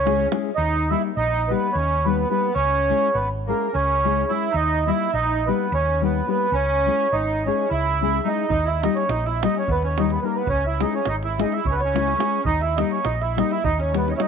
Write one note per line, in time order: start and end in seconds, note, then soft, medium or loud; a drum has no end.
0.00 0.25 C#2 medium
0.00 0.28 C#4 medium
0.00 0.27 C#5 loud
0.05 0.24 G#3 medium
0.05 0.24 C#4 medium
0.05 0.24 E4 medium
0.05 0.25 G#4 medium
0.05 davul high medium
0.19 davul high soft
0.31 0.49 G#3 medium
0.31 0.49 C#4 medium
0.31 0.50 E4 medium
0.31 0.50 G#4 medium
0.31 davul high medium
0.55 0.93 D#2 loud
0.55 0.88 D#4 loud
0.55 0.91 D#5 loud
0.90 1.08 G3 medium
0.90 1.09 A#3 medium
0.90 1.09 D#4 medium
0.90 1.02 E4 medium
0.90 1.10 G4 medium
0.90 1.02 E5 loud
1.17 1.52 A#1 medium
1.17 1.48 D#4 loud
1.17 1.51 D#5 loud
1.49 1.68 G3 medium
1.49 1.69 A#3 medium
1.49 1.74 B3 medium
1.49 1.69 D#4 medium
1.49 1.69 G4 medium
1.49 1.76 B4 medium
1.73 2.23 D#2 medium
1.73 2.05 C#5 medium
1.77 2.04 C#4 medium
2.05 2.23 G3 medium
2.05 2.24 A#3 medium
2.05 2.29 B3 medium
2.05 2.24 D#4 medium
2.05 2.24 G4 medium
2.05 2.28 B4 medium
2.29 2.48 G3 medium
2.29 2.48 A#3 medium
2.29 2.54 B3 medium
2.29 2.48 D#4 medium
2.29 2.48 G4 medium
2.29 2.53 B4 medium
2.54 2.91 C#2 medium
2.54 3.10 C#4 loud
2.54 3.17 C#5 loud
2.89 3.07 G#3 medium
2.89 3.08 C#4 medium
2.89 3.08 E4 medium
2.89 3.08 G#4 medium
3.13 3.51 G#1 medium
3.13 3.28 B3 medium
3.13 3.29 B4 medium
3.46 3.67 G#3 medium
3.46 3.71 A#3 medium
3.46 3.67 C#4 medium
3.46 3.67 E4 medium
3.46 3.67 G#4 medium
3.46 3.75 A#4 medium
3.73 4.22 C#2 medium
3.73 4.25 C#4 medium
3.73 4.31 C#5 loud
4.04 4.22 G#3 medium
4.04 4.22 C#4 medium
4.04 4.22 E4 medium
4.04 4.23 G#4 medium
4.28 4.47 G#3 soft
4.28 4.47 C#4 medium
4.28 4.52 E4 medium
4.28 4.47 E4 medium
4.28 4.48 G#4 medium
4.28 4.55 E5 medium
4.51 4.90 D#2 medium
4.51 4.84 D#4 medium
4.57 4.90 D#5 loud
4.86 5.05 G3 medium
4.86 5.06 A#3 medium
4.86 5.06 D#4 medium
4.86 5.11 E4 medium
4.86 5.06 G4 medium
4.86 5.14 E5 medium
5.13 5.49 A#1 medium
5.13 5.45 D#4 loud
5.13 5.48 D#5 loud
5.47 5.66 G3 medium
5.47 5.65 A#3 medium
5.47 5.71 B3 medium
5.47 5.66 D#4 medium
5.47 5.66 G4 medium
5.47 5.74 B4 medium
5.72 6.20 D#2 loud
5.72 6.01 C#4 medium
5.72 6.02 C#5 medium
6.01 6.19 G3 medium
6.01 6.20 A#3 medium
6.01 6.26 B3 medium
6.01 6.20 D#4 medium
6.01 6.20 G4 medium
6.01 6.29 B4 medium
6.27 6.45 G3 medium
6.27 6.45 A#3 soft
6.27 6.51 B3 medium
6.27 6.45 D#4 medium
6.27 6.45 G4 medium
6.27 6.55 B4 medium
6.52 6.88 C#2 medium
6.52 7.07 C#4 loud
6.52 7.15 C#5 loud
6.86 7.04 G#3 medium
6.86 7.04 C#4 medium
6.86 7.05 E4 medium
6.86 7.05 G#4 medium
7.12 7.48 G#1 medium
7.12 7.43 D#4 medium
7.12 7.47 D#5 loud
7.45 7.64 G#3 medium
7.45 7.69 C#4 medium
7.45 7.64 C#4 medium
7.45 7.64 E4 medium
7.45 7.65 G#4 medium
7.45 7.70 C#5 medium
7.70 8.19 C#2 medium
7.70 8.21 E4 loud
7.70 8.28 E5 loud
8.01 8.18 G#3 medium
8.01 8.18 C#4 medium
8.01 8.19 E4 medium
8.01 8.19 G#4 medium
8.24 8.42 G#3 medium
8.24 8.43 C#4 medium
8.24 8.46 D#4 medium
8.24 8.43 E4 soft
8.24 8.43 G#4 medium
8.28 8.50 D#5 medium
8.48 8.86 D#2 medium
8.48 8.64 D#4 loud
8.48 8.68 D#5 loud
8.48 davul low medium
8.64 8.81 E4 medium
8.64 8.84 E5 medium
8.64 davul high soft
8.81 9.02 G3 medium
8.81 9.02 A#3 medium
8.81 8.94 D#4 medium
8.81 8.97 D#5 medium
8.81 davul high medium
8.85 9.02 D#4 medium
8.85 9.02 G4 medium
8.95 9.08 C#4 medium
8.95 9.09 C#5 medium
8.95 davul high soft
9.08 9.45 A#1 loud
9.08 9.24 D#4 medium
9.08 9.27 D#5 medium
9.08 davul high medium
9.25 9.41 E4 medium
9.25 9.43 E5 medium
9.25 davul high soft
9.41 9.61 G3 medium
9.41 9.61 A#3 medium
9.41 9.54 D#4 medium
9.41 9.61 D#4 soft
9.41 9.62 G4 medium
9.41 9.57 D#5 medium
9.41 davul high medium
9.55 9.67 C#4 medium
9.55 9.70 C#5 medium
9.55 davul high soft
9.68 10.16 D#2 loud
9.68 9.82 B3 medium
9.68 9.85 B4 loud
9.68 davul low medium
9.82 9.97 C#4 medium
9.82 10.00 C#5 medium
9.82 davul high soft
9.98 10.16 G3 medium
9.98 10.16 A#3 medium
9.98 10.11 D#4 medium
9.98 10.16 D#4 medium
9.98 10.17 G4 medium
9.98 10.11 D#5 medium
9.98 davul high medium
10.10 10.20 B3 medium
10.10 10.20 B4 medium
10.10 davul high soft
10.21 10.40 G3 medium
10.21 10.41 A#3 medium
10.21 10.35 A#3 medium
10.21 10.24 B3 soft
10.21 10.41 D#4 soft
10.21 10.41 G4 medium
10.21 10.36 A#4 medium
10.21 10.24 B4 medium
10.36 10.48 B3 medium
10.36 10.48 B4 medium
10.47 10.83 C#2 loud
10.47 10.64 C#4 loud
10.47 10.66 C#5 loud
10.47 davul low loud
10.67 10.82 E4 medium
10.67 10.81 E5 medium
10.80 10.99 G#3 medium
10.80 10.99 C#4 medium
10.80 10.94 D#4 medium
10.80 10.99 E4 medium
10.80 10.99 G#4 medium
10.80 10.95 D#5 medium
10.80 davul high medium
10.93 11.07 C#4 medium
10.93 11.08 C#5 medium
10.93 davul high soft
11.05 11.42 G#1 loud
11.05 11.16 D#4 medium
11.05 11.15 D#5 medium
11.05 davul high medium
11.23 11.39 E4 medium
11.23 11.41 E5 medium
11.23 davul high soft
11.38 11.58 G#3 medium
11.38 11.58 C#4 soft
11.38 11.53 D#4 medium
11.38 11.58 E4 medium
11.38 11.59 G#4 medium
11.38 11.54 D#5 medium
11.38 davul high medium
11.52 11.67 E4 medium
11.52 11.66 E5 medium
11.52 davul high soft
11.65 12.14 C#2 medium
11.65 11.73 C#5 medium
11.65 davul low medium
11.70 11.75 C#4 medium
11.70 11.80 B4 medium
11.75 11.82 B3 medium
11.80 12.43 C#4 medium
11.80 12.41 C#5 medium
11.80 davul high soft
11.94 12.13 G#3 medium
11.94 12.13 C#4 medium
11.94 12.13 E4 medium
11.94 12.13 G#4 medium
11.94 davul high medium
12.08 davul high soft
12.18 12.37 G#3 medium
12.18 12.37 C#4 medium
12.18 12.38 E4 medium
12.18 12.38 G#4 medium
12.18 davul high medium
12.45 12.81 D#2 medium
12.45 12.61 D#4 loud
12.45 12.61 D#5 loud
12.45 davul low medium
12.61 12.78 E4 medium
12.61 12.79 E5 medium
12.61 davul high soft
12.77 12.96 G3 medium
12.77 12.97 A#3 medium
12.77 12.97 D#4 medium
12.77 12.92 D#4 medium
12.77 12.97 G4 medium
12.77 12.91 D#5 loud
12.77 davul high medium
12.91 13.04 C#4 soft
12.91 13.05 C#5 medium
12.91 davul high soft
13.03 13.41 A#1 medium
13.03 13.20 D#4 medium
13.03 13.22 D#5 medium
13.03 davul high medium
13.21 13.37 E4 medium
13.21 13.39 E5 medium
13.21 davul high soft
13.36 13.56 G3 medium
13.36 13.56 A#3 medium
13.36 13.56 D#4 soft
13.36 13.51 D#4 medium
13.36 13.57 G4 medium
13.36 13.52 D#5 medium
13.36 davul high medium
13.51 13.63 E4 medium
13.51 13.63 E5 medium
13.51 davul high soft
13.64 14.12 D#2 medium
13.64 13.78 D#4 loud
13.64 13.80 D#5 loud
13.64 davul low loud
13.78 13.92 C#4 medium
13.78 13.95 C#5 medium
13.78 davul high soft
13.93 14.11 G3 medium
13.93 14.11 A#3 medium
13.93 14.06 B3 medium
13.93 14.11 D#4 medium
13.93 14.12 G4 medium
13.93 davul high medium
13.98 14.09 B4 medium
14.08 14.10 C#4 medium
14.08 14.12 D#4 medium
14.08 14.12 C#5 medium
14.08 14.14 D#5 medium
14.08 davul high soft
14.14 14.19 C#4 medium
14.14 14.19 E4 medium
14.14 14.21 C#5 medium
14.14 14.20 E5 medium
14.18 14.28 G3 medium
14.18 14.28 A#3 medium
14.18 14.28 D#4 medium
14.18 14.28 G4 medium
14.18 14.28 D#5 medium
14.18 davul high medium